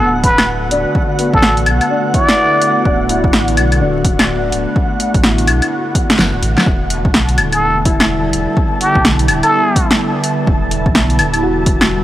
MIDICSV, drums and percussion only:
0, 0, Header, 1, 2, 480
1, 0, Start_track
1, 0, Tempo, 476190
1, 958, Time_signature, 4, 2, 24, 8
1, 12135, End_track
2, 0, Start_track
2, 0, Title_t, "Drums"
2, 237, Note_on_c, 9, 36, 103
2, 238, Note_on_c, 9, 42, 51
2, 338, Note_off_c, 9, 36, 0
2, 339, Note_off_c, 9, 42, 0
2, 386, Note_on_c, 9, 40, 98
2, 386, Note_on_c, 9, 75, 59
2, 486, Note_off_c, 9, 40, 0
2, 486, Note_off_c, 9, 75, 0
2, 717, Note_on_c, 9, 42, 50
2, 818, Note_off_c, 9, 42, 0
2, 958, Note_on_c, 9, 36, 105
2, 1059, Note_off_c, 9, 36, 0
2, 1198, Note_on_c, 9, 42, 52
2, 1299, Note_off_c, 9, 42, 0
2, 1347, Note_on_c, 9, 36, 100
2, 1437, Note_on_c, 9, 40, 95
2, 1447, Note_off_c, 9, 36, 0
2, 1537, Note_off_c, 9, 40, 0
2, 1584, Note_on_c, 9, 42, 26
2, 1676, Note_off_c, 9, 42, 0
2, 1676, Note_on_c, 9, 42, 49
2, 1676, Note_on_c, 9, 75, 61
2, 1777, Note_off_c, 9, 42, 0
2, 1777, Note_off_c, 9, 75, 0
2, 1824, Note_on_c, 9, 42, 28
2, 1824, Note_on_c, 9, 75, 35
2, 1925, Note_off_c, 9, 42, 0
2, 1925, Note_off_c, 9, 75, 0
2, 2157, Note_on_c, 9, 42, 51
2, 2158, Note_on_c, 9, 36, 99
2, 2258, Note_off_c, 9, 42, 0
2, 2259, Note_off_c, 9, 36, 0
2, 2303, Note_on_c, 9, 40, 97
2, 2404, Note_off_c, 9, 40, 0
2, 2637, Note_on_c, 9, 42, 49
2, 2737, Note_off_c, 9, 42, 0
2, 2877, Note_on_c, 9, 36, 105
2, 2978, Note_off_c, 9, 36, 0
2, 3119, Note_on_c, 9, 42, 51
2, 3220, Note_off_c, 9, 42, 0
2, 3266, Note_on_c, 9, 36, 96
2, 3358, Note_on_c, 9, 40, 98
2, 3366, Note_off_c, 9, 36, 0
2, 3459, Note_off_c, 9, 40, 0
2, 3508, Note_on_c, 9, 42, 29
2, 3600, Note_off_c, 9, 42, 0
2, 3600, Note_on_c, 9, 42, 51
2, 3600, Note_on_c, 9, 75, 64
2, 3701, Note_off_c, 9, 42, 0
2, 3701, Note_off_c, 9, 75, 0
2, 3749, Note_on_c, 9, 42, 29
2, 3749, Note_on_c, 9, 75, 36
2, 3850, Note_off_c, 9, 42, 0
2, 3850, Note_off_c, 9, 75, 0
2, 4077, Note_on_c, 9, 36, 92
2, 4078, Note_on_c, 9, 42, 52
2, 4178, Note_off_c, 9, 36, 0
2, 4179, Note_off_c, 9, 42, 0
2, 4225, Note_on_c, 9, 40, 94
2, 4225, Note_on_c, 9, 75, 65
2, 4326, Note_off_c, 9, 40, 0
2, 4326, Note_off_c, 9, 75, 0
2, 4560, Note_on_c, 9, 42, 52
2, 4661, Note_off_c, 9, 42, 0
2, 4797, Note_on_c, 9, 36, 107
2, 4898, Note_off_c, 9, 36, 0
2, 5039, Note_on_c, 9, 42, 55
2, 5140, Note_off_c, 9, 42, 0
2, 5185, Note_on_c, 9, 36, 98
2, 5186, Note_on_c, 9, 42, 30
2, 5277, Note_on_c, 9, 40, 96
2, 5286, Note_off_c, 9, 36, 0
2, 5286, Note_off_c, 9, 42, 0
2, 5378, Note_off_c, 9, 40, 0
2, 5427, Note_on_c, 9, 42, 29
2, 5518, Note_off_c, 9, 42, 0
2, 5518, Note_on_c, 9, 42, 52
2, 5518, Note_on_c, 9, 75, 63
2, 5619, Note_off_c, 9, 42, 0
2, 5619, Note_off_c, 9, 75, 0
2, 5666, Note_on_c, 9, 42, 30
2, 5666, Note_on_c, 9, 75, 38
2, 5767, Note_off_c, 9, 42, 0
2, 5767, Note_off_c, 9, 75, 0
2, 5997, Note_on_c, 9, 36, 94
2, 5999, Note_on_c, 9, 42, 52
2, 6098, Note_off_c, 9, 36, 0
2, 6099, Note_off_c, 9, 42, 0
2, 6147, Note_on_c, 9, 40, 99
2, 6237, Note_on_c, 9, 38, 103
2, 6248, Note_off_c, 9, 40, 0
2, 6337, Note_off_c, 9, 38, 0
2, 6478, Note_on_c, 9, 42, 53
2, 6578, Note_off_c, 9, 42, 0
2, 6629, Note_on_c, 9, 38, 75
2, 6629, Note_on_c, 9, 75, 35
2, 6718, Note_on_c, 9, 36, 111
2, 6730, Note_off_c, 9, 38, 0
2, 6730, Note_off_c, 9, 75, 0
2, 6819, Note_off_c, 9, 36, 0
2, 6958, Note_on_c, 9, 42, 56
2, 7059, Note_off_c, 9, 42, 0
2, 7106, Note_on_c, 9, 36, 106
2, 7197, Note_on_c, 9, 40, 102
2, 7207, Note_off_c, 9, 36, 0
2, 7298, Note_off_c, 9, 40, 0
2, 7344, Note_on_c, 9, 42, 32
2, 7436, Note_off_c, 9, 42, 0
2, 7436, Note_on_c, 9, 42, 54
2, 7436, Note_on_c, 9, 75, 62
2, 7537, Note_off_c, 9, 42, 0
2, 7537, Note_off_c, 9, 75, 0
2, 7585, Note_on_c, 9, 42, 31
2, 7585, Note_on_c, 9, 75, 36
2, 7685, Note_off_c, 9, 42, 0
2, 7685, Note_off_c, 9, 75, 0
2, 7917, Note_on_c, 9, 36, 99
2, 7917, Note_on_c, 9, 42, 56
2, 8018, Note_off_c, 9, 36, 0
2, 8018, Note_off_c, 9, 42, 0
2, 8065, Note_on_c, 9, 40, 102
2, 8065, Note_on_c, 9, 75, 65
2, 8166, Note_off_c, 9, 40, 0
2, 8166, Note_off_c, 9, 75, 0
2, 8399, Note_on_c, 9, 42, 56
2, 8500, Note_off_c, 9, 42, 0
2, 8636, Note_on_c, 9, 36, 118
2, 8737, Note_off_c, 9, 36, 0
2, 8878, Note_on_c, 9, 42, 55
2, 8979, Note_off_c, 9, 42, 0
2, 9025, Note_on_c, 9, 36, 105
2, 9120, Note_on_c, 9, 40, 109
2, 9126, Note_off_c, 9, 36, 0
2, 9220, Note_off_c, 9, 40, 0
2, 9266, Note_on_c, 9, 42, 32
2, 9357, Note_off_c, 9, 42, 0
2, 9357, Note_on_c, 9, 42, 54
2, 9357, Note_on_c, 9, 75, 62
2, 9458, Note_off_c, 9, 42, 0
2, 9458, Note_off_c, 9, 75, 0
2, 9507, Note_on_c, 9, 42, 32
2, 9507, Note_on_c, 9, 75, 35
2, 9607, Note_off_c, 9, 42, 0
2, 9607, Note_off_c, 9, 75, 0
2, 9836, Note_on_c, 9, 36, 106
2, 9839, Note_on_c, 9, 42, 56
2, 9937, Note_off_c, 9, 36, 0
2, 9939, Note_off_c, 9, 42, 0
2, 9986, Note_on_c, 9, 40, 104
2, 10087, Note_off_c, 9, 40, 0
2, 10319, Note_on_c, 9, 42, 55
2, 10420, Note_off_c, 9, 42, 0
2, 10557, Note_on_c, 9, 36, 120
2, 10658, Note_off_c, 9, 36, 0
2, 10799, Note_on_c, 9, 42, 54
2, 10900, Note_off_c, 9, 42, 0
2, 10946, Note_on_c, 9, 36, 105
2, 11037, Note_on_c, 9, 40, 105
2, 11047, Note_off_c, 9, 36, 0
2, 11137, Note_off_c, 9, 40, 0
2, 11188, Note_on_c, 9, 42, 31
2, 11278, Note_off_c, 9, 42, 0
2, 11278, Note_on_c, 9, 42, 53
2, 11278, Note_on_c, 9, 75, 60
2, 11379, Note_off_c, 9, 42, 0
2, 11379, Note_off_c, 9, 75, 0
2, 11426, Note_on_c, 9, 42, 30
2, 11426, Note_on_c, 9, 75, 33
2, 11527, Note_off_c, 9, 42, 0
2, 11527, Note_off_c, 9, 75, 0
2, 11756, Note_on_c, 9, 42, 55
2, 11758, Note_on_c, 9, 36, 107
2, 11857, Note_off_c, 9, 42, 0
2, 11859, Note_off_c, 9, 36, 0
2, 11905, Note_on_c, 9, 40, 108
2, 11905, Note_on_c, 9, 75, 60
2, 12006, Note_off_c, 9, 40, 0
2, 12006, Note_off_c, 9, 75, 0
2, 12135, End_track
0, 0, End_of_file